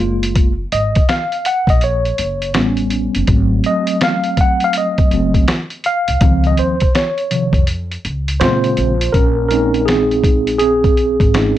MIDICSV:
0, 0, Header, 1, 5, 480
1, 0, Start_track
1, 0, Key_signature, -5, "minor"
1, 0, Tempo, 731707
1, 235, Time_signature, 4, 2, 24, 8
1, 7598, End_track
2, 0, Start_track
2, 0, Title_t, "Tine electric piano"
2, 0, Program_c, 0, 4
2, 0, Note_on_c, 0, 56, 54
2, 0, Note_on_c, 0, 58, 49
2, 1, Note_on_c, 0, 65, 57
2, 339, Note_off_c, 0, 56, 0
2, 343, Note_off_c, 0, 58, 0
2, 343, Note_off_c, 0, 65, 0
2, 476, Note_on_c, 0, 75, 84
2, 714, Note_on_c, 0, 77, 96
2, 723, Note_off_c, 0, 75, 0
2, 960, Note_on_c, 0, 78, 94
2, 962, Note_off_c, 0, 77, 0
2, 1114, Note_on_c, 0, 75, 87
2, 1116, Note_off_c, 0, 78, 0
2, 1200, Note_off_c, 0, 75, 0
2, 1206, Note_on_c, 0, 73, 80
2, 1654, Note_off_c, 0, 73, 0
2, 1675, Note_on_c, 0, 55, 60
2, 1680, Note_on_c, 0, 59, 56
2, 1686, Note_on_c, 0, 61, 67
2, 2131, Note_off_c, 0, 55, 0
2, 2133, Note_off_c, 0, 59, 0
2, 2137, Note_off_c, 0, 61, 0
2, 2153, Note_on_c, 0, 54, 59
2, 2159, Note_on_c, 0, 57, 50
2, 2163, Note_on_c, 0, 60, 61
2, 2404, Note_on_c, 0, 75, 93
2, 2623, Note_off_c, 0, 75, 0
2, 2647, Note_on_c, 0, 77, 99
2, 2888, Note_off_c, 0, 77, 0
2, 2892, Note_on_c, 0, 78, 93
2, 3042, Note_off_c, 0, 78, 0
2, 3046, Note_on_c, 0, 77, 102
2, 3118, Note_off_c, 0, 77, 0
2, 3133, Note_on_c, 0, 75, 78
2, 3358, Note_off_c, 0, 54, 0
2, 3362, Note_off_c, 0, 57, 0
2, 3362, Note_off_c, 0, 60, 0
2, 3366, Note_on_c, 0, 54, 46
2, 3370, Note_on_c, 0, 57, 47
2, 3370, Note_on_c, 0, 60, 58
2, 3577, Note_off_c, 0, 54, 0
2, 3578, Note_off_c, 0, 75, 0
2, 3579, Note_off_c, 0, 57, 0
2, 3579, Note_off_c, 0, 60, 0
2, 3845, Note_on_c, 0, 77, 102
2, 4080, Note_on_c, 0, 51, 58
2, 4087, Note_on_c, 0, 53, 58
2, 4089, Note_on_c, 0, 60, 71
2, 4243, Note_on_c, 0, 75, 79
2, 4246, Note_off_c, 0, 77, 0
2, 4324, Note_off_c, 0, 75, 0
2, 4324, Note_on_c, 0, 72, 86
2, 4423, Note_off_c, 0, 51, 0
2, 4427, Note_off_c, 0, 53, 0
2, 4428, Note_off_c, 0, 60, 0
2, 4543, Note_off_c, 0, 72, 0
2, 4560, Note_on_c, 0, 73, 78
2, 4796, Note_on_c, 0, 51, 47
2, 4798, Note_on_c, 0, 53, 43
2, 4800, Note_on_c, 0, 48, 54
2, 5011, Note_off_c, 0, 73, 0
2, 5012, Note_off_c, 0, 51, 0
2, 5013, Note_off_c, 0, 53, 0
2, 5014, Note_off_c, 0, 48, 0
2, 5509, Note_on_c, 0, 72, 98
2, 5518, Note_on_c, 0, 49, 62
2, 5521, Note_on_c, 0, 56, 57
2, 5523, Note_on_c, 0, 60, 67
2, 5528, Note_on_c, 0, 65, 77
2, 5862, Note_off_c, 0, 49, 0
2, 5863, Note_off_c, 0, 56, 0
2, 5864, Note_off_c, 0, 60, 0
2, 5975, Note_off_c, 0, 65, 0
2, 5986, Note_on_c, 0, 70, 88
2, 6006, Note_off_c, 0, 72, 0
2, 6006, Note_on_c, 0, 61, 69
2, 6215, Note_off_c, 0, 70, 0
2, 6222, Note_on_c, 0, 70, 76
2, 6224, Note_off_c, 0, 61, 0
2, 6235, Note_on_c, 0, 56, 54
2, 6235, Note_on_c, 0, 60, 55
2, 6239, Note_on_c, 0, 61, 61
2, 6242, Note_on_c, 0, 63, 61
2, 6463, Note_off_c, 0, 61, 0
2, 6465, Note_on_c, 0, 68, 84
2, 6476, Note_off_c, 0, 70, 0
2, 6480, Note_off_c, 0, 60, 0
2, 6488, Note_on_c, 0, 60, 62
2, 6929, Note_off_c, 0, 56, 0
2, 6932, Note_off_c, 0, 63, 0
2, 6935, Note_off_c, 0, 60, 0
2, 6935, Note_off_c, 0, 68, 0
2, 6943, Note_on_c, 0, 68, 84
2, 6964, Note_on_c, 0, 60, 63
2, 7434, Note_off_c, 0, 60, 0
2, 7440, Note_on_c, 0, 56, 52
2, 7441, Note_on_c, 0, 61, 51
2, 7442, Note_on_c, 0, 60, 48
2, 7446, Note_on_c, 0, 63, 56
2, 7598, Note_off_c, 0, 56, 0
2, 7598, Note_off_c, 0, 60, 0
2, 7598, Note_off_c, 0, 61, 0
2, 7598, Note_off_c, 0, 63, 0
2, 7598, Note_off_c, 0, 68, 0
2, 7598, End_track
3, 0, Start_track
3, 0, Title_t, "Upright bass"
3, 0, Program_c, 1, 32
3, 0, Note_on_c, 1, 30, 89
3, 407, Note_off_c, 1, 30, 0
3, 475, Note_on_c, 1, 32, 83
3, 607, Note_off_c, 1, 32, 0
3, 1097, Note_on_c, 1, 34, 89
3, 1382, Note_off_c, 1, 34, 0
3, 1437, Note_on_c, 1, 30, 80
3, 1677, Note_off_c, 1, 30, 0
3, 1677, Note_on_c, 1, 33, 101
3, 2015, Note_off_c, 1, 33, 0
3, 2074, Note_on_c, 1, 30, 83
3, 2145, Note_off_c, 1, 30, 0
3, 2151, Note_on_c, 1, 32, 114
3, 2359, Note_off_c, 1, 32, 0
3, 3353, Note_on_c, 1, 30, 84
3, 3560, Note_off_c, 1, 30, 0
3, 3991, Note_on_c, 1, 36, 85
3, 4064, Note_off_c, 1, 36, 0
3, 4077, Note_on_c, 1, 37, 121
3, 4282, Note_off_c, 1, 37, 0
3, 4320, Note_on_c, 1, 39, 85
3, 4451, Note_off_c, 1, 39, 0
3, 4938, Note_on_c, 1, 41, 88
3, 5222, Note_off_c, 1, 41, 0
3, 5280, Note_on_c, 1, 37, 87
3, 5518, Note_on_c, 1, 46, 106
3, 5527, Note_off_c, 1, 37, 0
3, 5722, Note_off_c, 1, 46, 0
3, 5760, Note_on_c, 1, 34, 92
3, 5964, Note_off_c, 1, 34, 0
3, 5996, Note_on_c, 1, 34, 106
3, 7324, Note_off_c, 1, 34, 0
3, 7351, Note_on_c, 1, 32, 88
3, 7556, Note_off_c, 1, 32, 0
3, 7598, End_track
4, 0, Start_track
4, 0, Title_t, "Muted upright bass strokes"
4, 3271, Note_on_c, 9, 29, 46
4, 3337, Note_off_c, 9, 29, 0
4, 7598, End_track
5, 0, Start_track
5, 0, Title_t, "Drums"
5, 151, Note_on_c, 9, 42, 69
5, 216, Note_off_c, 9, 42, 0
5, 233, Note_on_c, 9, 42, 101
5, 234, Note_on_c, 9, 36, 107
5, 298, Note_off_c, 9, 42, 0
5, 300, Note_off_c, 9, 36, 0
5, 473, Note_on_c, 9, 42, 67
5, 538, Note_off_c, 9, 42, 0
5, 626, Note_on_c, 9, 42, 53
5, 631, Note_on_c, 9, 36, 93
5, 691, Note_off_c, 9, 42, 0
5, 697, Note_off_c, 9, 36, 0
5, 714, Note_on_c, 9, 42, 97
5, 718, Note_on_c, 9, 38, 106
5, 779, Note_off_c, 9, 42, 0
5, 783, Note_off_c, 9, 38, 0
5, 866, Note_on_c, 9, 42, 36
5, 932, Note_off_c, 9, 42, 0
5, 952, Note_on_c, 9, 42, 86
5, 1017, Note_off_c, 9, 42, 0
5, 1097, Note_on_c, 9, 36, 93
5, 1107, Note_on_c, 9, 42, 57
5, 1162, Note_off_c, 9, 36, 0
5, 1173, Note_off_c, 9, 42, 0
5, 1188, Note_on_c, 9, 42, 86
5, 1254, Note_off_c, 9, 42, 0
5, 1347, Note_on_c, 9, 42, 35
5, 1412, Note_off_c, 9, 42, 0
5, 1431, Note_on_c, 9, 42, 66
5, 1497, Note_off_c, 9, 42, 0
5, 1586, Note_on_c, 9, 42, 59
5, 1652, Note_off_c, 9, 42, 0
5, 1667, Note_on_c, 9, 42, 85
5, 1670, Note_on_c, 9, 38, 125
5, 1733, Note_off_c, 9, 42, 0
5, 1736, Note_off_c, 9, 38, 0
5, 1816, Note_on_c, 9, 42, 38
5, 1882, Note_off_c, 9, 42, 0
5, 1905, Note_on_c, 9, 42, 57
5, 1971, Note_off_c, 9, 42, 0
5, 2064, Note_on_c, 9, 42, 69
5, 2130, Note_off_c, 9, 42, 0
5, 2148, Note_on_c, 9, 42, 94
5, 2151, Note_on_c, 9, 36, 108
5, 2213, Note_off_c, 9, 42, 0
5, 2216, Note_off_c, 9, 36, 0
5, 2387, Note_on_c, 9, 42, 65
5, 2452, Note_off_c, 9, 42, 0
5, 2538, Note_on_c, 9, 42, 60
5, 2604, Note_off_c, 9, 42, 0
5, 2630, Note_on_c, 9, 42, 98
5, 2634, Note_on_c, 9, 38, 114
5, 2695, Note_off_c, 9, 42, 0
5, 2699, Note_off_c, 9, 38, 0
5, 2779, Note_on_c, 9, 42, 37
5, 2844, Note_off_c, 9, 42, 0
5, 2868, Note_on_c, 9, 42, 85
5, 2869, Note_on_c, 9, 36, 88
5, 2934, Note_off_c, 9, 42, 0
5, 2935, Note_off_c, 9, 36, 0
5, 3019, Note_on_c, 9, 42, 56
5, 3085, Note_off_c, 9, 42, 0
5, 3104, Note_on_c, 9, 42, 94
5, 3169, Note_off_c, 9, 42, 0
5, 3266, Note_on_c, 9, 42, 38
5, 3269, Note_on_c, 9, 36, 99
5, 3332, Note_off_c, 9, 42, 0
5, 3335, Note_off_c, 9, 36, 0
5, 3354, Note_on_c, 9, 42, 64
5, 3420, Note_off_c, 9, 42, 0
5, 3505, Note_on_c, 9, 36, 84
5, 3507, Note_on_c, 9, 42, 56
5, 3571, Note_off_c, 9, 36, 0
5, 3572, Note_off_c, 9, 42, 0
5, 3593, Note_on_c, 9, 42, 90
5, 3596, Note_on_c, 9, 38, 122
5, 3659, Note_off_c, 9, 42, 0
5, 3662, Note_off_c, 9, 38, 0
5, 3741, Note_on_c, 9, 42, 35
5, 3807, Note_off_c, 9, 42, 0
5, 3830, Note_on_c, 9, 42, 61
5, 3896, Note_off_c, 9, 42, 0
5, 3987, Note_on_c, 9, 42, 61
5, 4053, Note_off_c, 9, 42, 0
5, 4072, Note_on_c, 9, 42, 98
5, 4074, Note_on_c, 9, 36, 121
5, 4138, Note_off_c, 9, 42, 0
5, 4140, Note_off_c, 9, 36, 0
5, 4223, Note_on_c, 9, 42, 32
5, 4288, Note_off_c, 9, 42, 0
5, 4313, Note_on_c, 9, 42, 70
5, 4378, Note_off_c, 9, 42, 0
5, 4463, Note_on_c, 9, 42, 57
5, 4473, Note_on_c, 9, 36, 88
5, 4529, Note_off_c, 9, 42, 0
5, 4538, Note_off_c, 9, 36, 0
5, 4558, Note_on_c, 9, 42, 96
5, 4562, Note_on_c, 9, 38, 114
5, 4624, Note_off_c, 9, 42, 0
5, 4628, Note_off_c, 9, 38, 0
5, 4708, Note_on_c, 9, 42, 32
5, 4774, Note_off_c, 9, 42, 0
5, 4795, Note_on_c, 9, 42, 87
5, 4860, Note_off_c, 9, 42, 0
5, 4939, Note_on_c, 9, 36, 98
5, 4947, Note_on_c, 9, 42, 57
5, 5004, Note_off_c, 9, 36, 0
5, 5013, Note_off_c, 9, 42, 0
5, 5032, Note_on_c, 9, 42, 98
5, 5097, Note_off_c, 9, 42, 0
5, 5192, Note_on_c, 9, 42, 37
5, 5258, Note_off_c, 9, 42, 0
5, 5279, Note_on_c, 9, 42, 66
5, 5345, Note_off_c, 9, 42, 0
5, 5432, Note_on_c, 9, 42, 57
5, 5498, Note_off_c, 9, 42, 0
5, 5515, Note_on_c, 9, 42, 91
5, 5518, Note_on_c, 9, 38, 127
5, 5581, Note_off_c, 9, 42, 0
5, 5584, Note_off_c, 9, 38, 0
5, 5667, Note_on_c, 9, 42, 36
5, 5732, Note_off_c, 9, 42, 0
5, 5753, Note_on_c, 9, 42, 54
5, 5818, Note_off_c, 9, 42, 0
5, 5911, Note_on_c, 9, 42, 69
5, 5977, Note_off_c, 9, 42, 0
5, 5996, Note_on_c, 9, 36, 109
5, 5996, Note_on_c, 9, 42, 97
5, 6062, Note_off_c, 9, 36, 0
5, 6062, Note_off_c, 9, 42, 0
5, 6236, Note_on_c, 9, 42, 61
5, 6302, Note_off_c, 9, 42, 0
5, 6391, Note_on_c, 9, 42, 50
5, 6456, Note_off_c, 9, 42, 0
5, 6481, Note_on_c, 9, 42, 92
5, 6485, Note_on_c, 9, 38, 100
5, 6547, Note_off_c, 9, 42, 0
5, 6551, Note_off_c, 9, 38, 0
5, 6634, Note_on_c, 9, 42, 32
5, 6700, Note_off_c, 9, 42, 0
5, 6715, Note_on_c, 9, 36, 90
5, 6720, Note_on_c, 9, 42, 76
5, 6780, Note_off_c, 9, 36, 0
5, 6785, Note_off_c, 9, 42, 0
5, 6869, Note_on_c, 9, 42, 57
5, 6935, Note_off_c, 9, 42, 0
5, 6950, Note_on_c, 9, 42, 84
5, 7015, Note_off_c, 9, 42, 0
5, 7112, Note_on_c, 9, 36, 92
5, 7112, Note_on_c, 9, 42, 37
5, 7177, Note_off_c, 9, 42, 0
5, 7178, Note_off_c, 9, 36, 0
5, 7198, Note_on_c, 9, 42, 64
5, 7264, Note_off_c, 9, 42, 0
5, 7347, Note_on_c, 9, 36, 87
5, 7352, Note_on_c, 9, 42, 50
5, 7413, Note_off_c, 9, 36, 0
5, 7417, Note_off_c, 9, 42, 0
5, 7440, Note_on_c, 9, 42, 93
5, 7443, Note_on_c, 9, 38, 118
5, 7506, Note_off_c, 9, 42, 0
5, 7509, Note_off_c, 9, 38, 0
5, 7598, End_track
0, 0, End_of_file